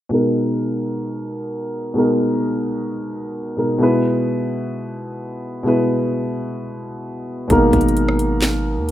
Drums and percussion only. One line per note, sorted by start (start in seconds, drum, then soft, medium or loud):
7.50 kick loud
7.50 closed hi-hat medium
7.73 kick loud
7.73 closed hi-hat medium
7.81 closed hi-hat medium
7.88 closed hi-hat medium
7.97 closed hi-hat medium
8.09 cross-stick loud
8.19 closed hi-hat medium
8.42 snare loud
8.42 clap medium
8.42 closed hi-hat medium